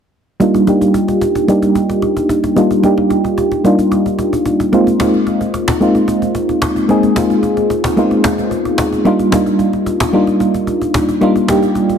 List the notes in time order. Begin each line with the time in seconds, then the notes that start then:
0.40 G3 A#3 D4 D#4 F4, cajon slap
0.54 cajon slap
0.67 G3 A#3 D4 D#4 G4, cajon slap
0.81 cajon slap
0.94 cajon slap
1.08 cajon slap
1.21 cajon slap
1.35 cajon slap
1.48 G3 A#3 D4 D#4 G4, cajon slap
1.62 cajon slap
1.75 cajon slap
1.90 cajon slap
2.02 cajon slap
2.17 cajon slap
2.29 cajon slap
2.44 cajon slap
2.56 G3 A#3 D4 D#4 F4, cajon slap
2.71 cajon slap
2.83 G3 A#3 D4 D#4 G4, cajon slap
2.98 cajon slap
3.10 cajon slap
3.25 cajon slap
3.38 cajon slap
3.52 cajon slap
3.64 G3 A#3 D4 D#4 F4, cajon slap
3.79 cajon slap
3.92 cajon slap
4.06 cajon slap
4.19 cajon slap
4.33 cajon slap
4.46 cajon slap
4.60 cajon slap
4.72 G#3 A#3 C4 D#4 F4, cajon slap
4.87 cajon slap
4.99 G#3 A#3 C4 D#4 F4, cajon slap
5.14 cajon slap
5.27 cajon slap
5.41 cajon slap
5.54 cajon slap
5.68 cajon slap
5.80 G#3 A#3 C4 D#4 F4, cajon slap
5.95 cajon slap
6.08 cajon slap
6.22 cajon slap
6.35 cajon slap
6.49 cajon slap
6.62 cajon slap
6.76 cajon slap
6.89 G#3 A#3 C4 D#4 G#4, cajon slap
7.03 cajon slap
7.16 G#3 A#3 C4 D#4 F4, cajon slap
7.30 cajon slap
7.43 cajon slap
7.57 cajon slap
7.70 cajon slap
7.84 cajon slap
7.97 G#3 A#3 B3 D#4 F4, cajon slap
8.04 C4
8.11 cajon slap
8.24 cajon slap
8.38 cajon slap
8.51 cajon slap
8.65 cajon slap
8.78 cajon slap
8.92 cajon slap
9.05 G3 A#3 D4 D#4 F4, cajon slap
9.19 cajon slap
9.32 G3 A#3 D4 D#4 F4, cajon slap
9.46 cajon slap
9.59 cajon slap
9.73 cajon slap
9.86 cajon slap
10.00 cajon slap
10.13 G3 A#3 D4 D#4 F4, cajon slap
10.27 cajon slap
10.40 cajon slap
10.54 cajon slap
10.67 cajon slap
10.82 cajon slap
10.94 cajon slap
11.09 cajon slap
11.21 G3 A#3 D4 D#4 F4, cajon slap
11.36 cajon slap
11.48 G3 A#3 D4 D#4 G4, cajon slap
11.62 cajon slap
11.75 cajon slap
11.89 cajon slap